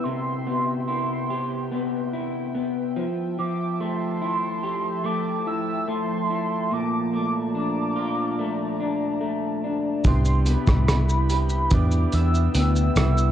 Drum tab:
HH |----------------|----------------|----------------|x-x-x-x-x-x-x-x-|
SH |----------------|----------------|----------------|xxxxxxxxxxxxxxxx|
SD |----------------|----------------|----------------|---rr---------r-|
BD |----------------|----------------|----------------|o--o----o-------|